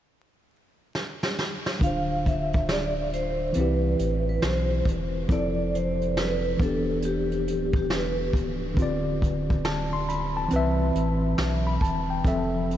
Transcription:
0.95 snare
1.23 snare
1.39 snare
1.66 snare
1.79 sub bass D1, tine electric piano D3 D4, kick, closed hi-hat
1.83 tine electric piano F4 C5, vibraphone F5
2.26 vibraphone E5, kick, closed hi-hat
2.53 kick, closed hi-hat
2.69 vibraphone D5, snare, closed hi-hat
3.13 vibraphone C5, closed hi-hat
3.53 sub bass C2, tine electric piano E3 C4, vibraphone B4, closed hi-hat
3.58 tine electric piano E4 G4
3.99 sub bass A1, closed hi-hat
4.29 vibraphone B4
4.42 sub bass B1, vibraphone C5, snare, closed hi-hat
4.85 sub bass E1, kick, closed hi-hat
5.28 sub bass F1, tine electric piano F3 C4 E4 A4, vibraphone D5, kick, closed hi-hat
5.75 vibraphone C5, closed hi-hat
6.01 closed hi-hat
6.17 vibraphone B4, snare, closed hi-hat
6.57 sub bass E1, tine electric piano E3 B3, kick
6.61 tine electric piano D4 G4, vibraphone A4, closed hi-hat
7.02 vibraphone G4, closed hi-hat
7.32 closed hi-hat
7.48 sub bass D1, closed hi-hat
7.73 vibraphone G4, kick
7.90 sub bass E1, vibraphone B4, snare, closed hi-hat
8.33 sub bass C#1, kick, closed hi-hat
8.74 sub bass D1, tine electric piano D3 C4, kick
8.78 tine electric piano F4 D5, closed hi-hat
9.22 kick, closed hi-hat
9.50 kick
9.65 tine electric piano A5, snare, closed hi-hat
9.93 tine electric piano C6
10.09 tine electric piano B5, closed hi-hat
10.37 tine electric piano A5
10.48 sub bass C2, tine electric piano E3 C4, closed hi-hat
10.53 tine electric piano B4 E5
10.95 sub bass A1, closed hi-hat
11.38 sub bass B1, snare, closed hi-hat
11.67 tine electric piano B5
11.81 sub bass E1, tine electric piano A5, kick, closed hi-hat
12.10 tine electric piano G5
12.24 sub bass F1, tine electric piano F3 C4 A4 E5, kick, closed hi-hat
12.71 closed hi-hat

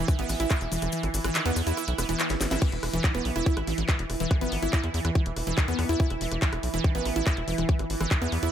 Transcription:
Already playing: synth texture E3
0.08 synth arpeggio sound D#3, kick, cross-stick, closed hi-hat, cabasa
0.19 analog synth bass A1, synth arpeggio sound B3, closed hi-hat, cabasa
0.29 analog synth bass A1, cross-stick, open hi-hat, cabasa
0.40 analog synth bass A1, synth arpeggio sound E4, closed hi-hat, cabasa
0.50 synth arpeggio sound E4, kick, cross-stick, clap, closed hi-hat, cabasa
0.61 analog synth bass E1, closed hi-hat, cabasa
0.72 analog synth bass E1, synth arpeggio sound E3, open hi-hat, cabasa
0.82 analog synth bass E1, synth arpeggio sound E3, cross-stick, closed hi-hat, cabasa
0.92 synth arpeggio sound E3, closed hi-hat, cabasa
1.03 analog synth bass G#1, cross-stick, closed hi-hat, cabasa
1.14 analog synth bass G#1, open hi-hat, cabasa
1.24 analog synth bass G#1, synth arpeggio sound E3, cross-stick, closed hi-hat, cabasa
1.35 synth arpeggio sound D#3, clap, closed hi-hat, cabasa
1.46 analog synth bass E2, synth arpeggio sound B3, closed hi-hat, cabasa
1.56 analog synth bass E2, cross-stick, open hi-hat, cabasa
1.67 analog synth bass E2, synth arpeggio sound E4, closed hi-hat, cabasa
1.77 synth arpeggio sound E4, cross-stick, closed hi-hat, cabasa
1.88 analog synth bass B1, closed hi-hat, cabasa
1.98 analog synth bass E1, synth arpeggio sound B3, cross-stick, open hi-hat, cabasa
2.09 analog synth bass E1, synth arpeggio sound E3, closed hi-hat, cabasa
2.20 synth arpeggio sound E3, clap, closed hi-hat, cabasa
2.29 analog synth bass G#1, snare, closed hi-hat, cabasa
2.41 analog synth bass G#1, snare, open hi-hat, cabasa
2.51 analog synth bass G#1, synth arpeggio sound E4, snare, closed hi-hat, cabasa
2.62 synth arpeggio sound E3, synth texture E3, kick, cross-stick, closed hi-hat, crash
2.72 analog synth bass E1, closed hi-hat
2.83 analog synth bass E1, cross-stick, open hi-hat
2.93 analog synth bass E1, synth arpeggio sound E3, closed hi-hat
3.04 synth arpeggio sound D#3, kick, clap, closed hi-hat
3.15 analog synth bass E1, synth arpeggio sound B3, cross-stick, closed hi-hat
3.25 analog synth bass B1, open hi-hat
3.36 analog synth bass E1, synth arpeggio sound E4, cross-stick, closed hi-hat
3.46 synth arpeggio sound E4, kick, closed hi-hat
3.57 analog synth bass A1, cross-stick, closed hi-hat
3.67 analog synth bass A1, synth arpeggio sound E3, open hi-hat
3.78 analog synth bass A1, synth arpeggio sound E3, closed hi-hat
3.89 synth arpeggio sound E3, kick, cross-stick, clap, closed hi-hat
3.99 analog synth bass E1, closed hi-hat
4.10 analog synth bass E1, cross-stick, open hi-hat
4.20 analog synth bass E1, synth arpeggio sound E3, closed hi-hat
4.31 synth arpeggio sound D#3, kick, cross-stick, closed hi-hat
4.41 analog synth bass G#1, synth arpeggio sound B3, closed hi-hat
4.52 analog synth bass G#1, open hi-hat
4.63 analog synth bass G#1, synth arpeggio sound E4, cross-stick, closed hi-hat
4.73 synth arpeggio sound E4, kick, clap, closed hi-hat
4.84 analog synth bass E2, cross-stick, closed hi-hat
4.94 analog synth bass E2, synth arpeggio sound E3, open hi-hat
5.05 analog synth bass E2, synth arpeggio sound E3, cross-stick, closed hi-hat
5.15 synth arpeggio sound E3, kick, closed hi-hat
5.26 analog synth bass E1, closed hi-hat
5.36 analog synth bass E1, cross-stick, open hi-hat
5.47 analog synth bass E1, synth arpeggio sound E3, closed hi-hat
5.58 synth arpeggio sound D#3, kick, cross-stick, clap, closed hi-hat
5.68 analog synth bass E2, synth arpeggio sound B3, closed hi-hat
5.79 analog synth bass E2, cross-stick, open hi-hat
5.89 analog synth bass E2, synth arpeggio sound E4, closed hi-hat
6.00 synth arpeggio sound E4, kick, closed hi-hat
6.10 analog synth bass E1, cross-stick, closed hi-hat
6.21 analog synth bass E1, synth arpeggio sound E3, open hi-hat
6.32 analog synth bass E1, synth arpeggio sound E3, cross-stick, closed hi-hat
6.42 synth arpeggio sound E3, kick, clap, closed hi-hat
6.53 analog synth bass E1, cross-stick, closed hi-hat
6.63 analog synth bass B1, open hi-hat
6.74 analog synth bass E1, synth arpeggio sound E3, closed hi-hat
6.84 synth arpeggio sound D#3, kick, cross-stick, closed hi-hat
6.95 analog synth bass A1, synth arpeggio sound B3, closed hi-hat
7.05 analog synth bass A1, cross-stick, open hi-hat
7.16 analog synth bass A1, synth arpeggio sound E4, closed hi-hat
7.27 synth arpeggio sound E4, kick, cross-stick, clap, closed hi-hat
7.37 analog synth bass E1, closed hi-hat
7.48 analog synth bass E1, synth arpeggio sound E3, open hi-hat
7.58 analog synth bass E1, synth arpeggio sound E3, cross-stick, closed hi-hat
7.69 kick, closed hi-hat
7.79 analog synth bass G#1, cross-stick, closed hi-hat
7.90 analog synth bass G#1, open hi-hat
8.01 analog synth bass G#1, synth arpeggio sound E3, cross-stick, closed hi-hat
8.11 synth arpeggio sound D#3, kick, clap, closed hi-hat
8.22 analog synth bass E2, synth arpeggio sound B3, closed hi-hat
8.32 analog synth bass E2, cross-stick, open hi-hat
8.43 analog synth bass E2, synth arpeggio sound E4, closed hi-hat

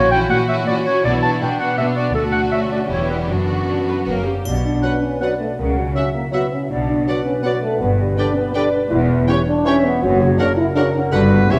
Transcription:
Already playing: double bass section A#1, cello section A#2, harp A#2 A#3 A#4, violin section C#4 E4 F#4, viola section F#4, clarinet C#5
0.11 harp E3, violin section C#4 E4 F#4, clarinet G5
0.30 cello section A#2, harp F#3, violin section C#4 E4 F#4, clarinet F#5
0.48 violin section C#4 E4 F#4, harp F#4, clarinet E5
0.67 cello section A#2, violin section C#4 E4 F#4, harp E4, clarinet D5
0.85 harp E3, violin section C#4 E4 F#4, clarinet C#5
1.04 double bass section B1, cello section B2, harp B2, violin section B3 D4 F#4, viola section E4, clarinet D5
1.22 violin section B3 D4 F#4, harp B3, clarinet A5
1.42 cello section B2, harp F#3, violin section B3 D4 F#4, viola section D4, clarinet G5
1.59 violin section B3 D4 F#4, harp F#4, clarinet F#5
1.78 cello section B2, violin section B3 D4 F#4, harp D4, clarinet E5
1.95 harp B3, violin section D4 F#4, clarinet D5
1.99 violin section B3
2.14 double bass section D2, cello section D2, harp D3, violin section A3 D4 F#4, viola section F#4, clarinet A4
2.32 harp F#3, clarinet F#5
2.52 violin section C#4, harp D4, clarinet E5
2.72 harp F#4, clarinet D5
2.91 double bass section E1, cello section E2, harp E3, violin section G3 B3 G4, viola section E4, clarinet C#5
3.10 harp B3 E4, clarinet B4
3.29 double bass section F#1, cello section F#2, harp F#2, violin section B3 D4 F#4, viola section D4, clarinet F#4
3.50 harp D3
3.68 harp F#3, viola section D4
3.88 harp D4, viola section B4
4.06 double bass section F#1, cello section F#2, harp F#2, violin section A#3 C#4 F#4, french horn section B3, viola section A#4
4.25 harp A#3 C#4, french horn section C#4, viola section G4
4.45 double bass section B1, harp B2, cello section B2, french horn section D4, flute section D5, triangle
4.65 harp F#3, french horn section D4
4.83 bassoon F#3, harp B3, viola section F#4, clarinet F#4, flute section B4, violin section B4 F#5, oboe F#5
5.02 french horn section C#4, harp D4
5.21 bassoon F#3, french horn section B3, clarinet F#4, viola section F#4, harp F#4, violin section B4 F#5, flute section D5, oboe F#5
5.40 french horn section A3, harp D4
5.58 double bass section C#2, harp C#3, cello section C#3, french horn section A#3, flute section F#5
5.77 french horn section F#3, harp C#4
5.95 bassoon F#3, harp F#3, french horn section C#4, clarinet F#4, viola section F#4, oboe E5, flute section E5, violin section E5 F#5
6.14 french horn section A#3, harp E4
6.32 bassoon F#3, french horn section B3, harp F#4, viola section F#4, clarinet F#4, oboe E5, violin section E5 F#5, flute section E5
6.53 french horn section C#4, harp E4
6.70 double bass section B1, cello section B2, harp B2, french horn section D4, flute section D5
6.89 harp B3, french horn section D4
7.07 bassoon F#3, harp F#3, viola section F#4, clarinet F#4, flute section B4, oboe D5, violin section D5 F#5
7.25 french horn section C#4, harp D4
7.43 bassoon F#3, french horn section B3, viola section F#4, harp F#4, clarinet F#4, violin section D5 F#5, oboe D5
7.62 french horn section A3, harp D4
7.79 double bass section G1, cello section G2, harp G2, french horn section B3, flute section B4
7.99 harp D3, french horn section G3
8.16 bassoon D3, harp G3, french horn section D4, clarinet G4, viola section B4, violin section D5 G5, oboe D5
8.36 french horn section B3, harp D4
8.54 bassoon D3, french horn section D4, clarinet G4, harp B4, viola section B4, violin section D5 G5, oboe D5
8.73 harp D4
8.91 double bass section E1, harp E2, cello section E2, french horn section E4
9.09 harp E3, french horn section E4
9.28 bassoon E3, harp G3, french horn section C#4, clarinet G4, oboe C#5, viola section C#5, violin section C#5 G5
9.47 french horn section D4, harp G4
9.65 bassoon E3, french horn section C#4, clarinet G4, harp C#5, oboe C#5, viola section C#5, violin section C#5 G5, flute section E5
9.83 french horn section B3, harp G4
10.02 double bass section F#1, cello section F#2, harp F#2, french horn section F#4, flute section C#5
10.21 harp C#3, french horn section F#4
10.37 bassoon C#3, harp A#3, french horn section D4, clarinet F#4, flute section A#4, oboe A#4, viola section A#4, violin section C#5 F#5
10.57 french horn section E4, harp F#4
10.75 bassoon C#3, french horn section D4, clarinet F#4, viola section A#4, flute section A#4, oboe A#4, harp C#5, violin section C#5 F#5
10.94 french horn section C#4, harp F#4
11.12 double bass section G1, harp G2, cello section G2, bassoon D3, french horn section D4, clarinet F#4, viola section G4, flute section B4, oboe B4, violin section B4 F#5
11.32 french horn section B3, harp F#4 B4
11.49 double bass section E1, harp E2, cello section E2, bassoon E3, french horn section C#4, clarinet G4, viola section G4, oboe C#5, violin section C#5 E5, flute section E5

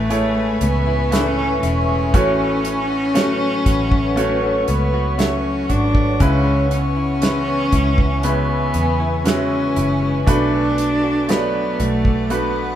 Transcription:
Already playing: fingered electric bass A1, grand piano A2 A3 E4 G#4 C#5, clean electric guitar E3 A3 C#4 E4, cello A3, ambient pad B4 E5 G#5 C#6
0.10 clean electric guitar A2, grand piano A3 E4 G#4 C#5, closed hi-hat
0.37 clean electric guitar G#3
0.61 fingered electric bass C#2, cello B3, clean electric guitar C#4, closed hi-hat
0.87 clean electric guitar E4
1.12 clean electric guitar E3, grand piano A3 E4 G#4 B4, cello C#4, snare, closed hi-hat
1.20 cello D4
1.27 cello C#4
1.38 clean electric guitar C#4
1.63 fingered electric bass E1, cello C#4, clean electric guitar E4, closed hi-hat
1.89 clean electric guitar G#3
2.14 fingered electric bass A1, clean electric guitar A2, grand piano A2 A3 C#4 F#4 C#5, ambient pad C#5 F#5, kick, closed hi-hat
2.39 clean electric guitar A3
2.64 clean electric guitar C#4, closed hi-hat
2.90 clean electric guitar F#4
3.14 clean electric guitar F#3, grand piano A3 C#4 F#4 C#5, snare, closed hi-hat
3.41 clean electric guitar C#4
3.66 fingered electric bass A1, clean electric guitar F#4, kick, closed hi-hat
3.92 clean electric guitar A3, kick
4.16 grand piano A3 C#4 F#4 C#5, closed hi-hat
4.43 clean electric guitar A3
4.68 fingered electric bass C#2, cello B3, clean electric guitar C#4, closed hi-hat
4.94 clean electric guitar F#4
5.18 clean electric guitar F#3, grand piano A3 F#4 C#5 E5, cello C#4, snare, closed hi-hat
5.69 fingered electric bass G#1, cello D4, clean electric guitar F#4, kick, closed hi-hat
5.95 clean electric guitar A3, kick
6.20 fingered electric bass C#2, clean electric guitar C#3, grand piano C#3 G#3 C#4 E4 B4, cello C#4, ambient pad B4 E5 G#5, kick, closed hi-hat
6.46 clean electric guitar G#3
6.71 clean electric guitar B3, cello C#4, closed hi-hat
6.96 clean electric guitar E4
7.21 clean electric guitar E3, grand piano G#3 C#4 E4 B4, snare, closed hi-hat
7.47 clean electric guitar B3
7.72 fingered electric bass C#2, clean electric guitar E4, kick, closed hi-hat
7.98 clean electric guitar G#3, kick
8.23 clean electric guitar C#3, grand piano G#3 C#4 E4 B4, cello B3, closed hi-hat
8.49 clean electric guitar G#3
8.74 fingered electric bass E2, clean electric guitar B3, closed hi-hat
9.00 clean electric guitar E4
9.25 clean electric guitar E3, grand piano G#3 C#4 E4 F#4, cello C#4, snare, closed hi-hat
9.51 clean electric guitar B3
9.76 fingered electric bass F#1, clean electric guitar E4, closed hi-hat
10.02 clean electric guitar G#3
10.27 fingered electric bass B1, grand piano B2 A3 D4 F#4 B4, clean electric guitar B2, cello D4, ambient pad F#5 A5 D6, kick, closed hi-hat
10.53 clean electric guitar A3
10.78 clean electric guitar D4, closed hi-hat
11.04 clean electric guitar F#4
11.28 clean electric guitar F#3, grand piano A3 D4 F#4 C#5, cello B3, snare, closed hi-hat
11.36 grand piano D5
11.55 clean electric guitar D4
11.80 fingered electric bass B1, cello A3, clean electric guitar F#4, closed hi-hat
12.05 clean electric guitar A3, kick
12.30 clean electric guitar B2, grand piano A3 D4 F#4 B4, cello B3, ambient pad G#5, closed hi-hat
12.56 clean electric guitar A3

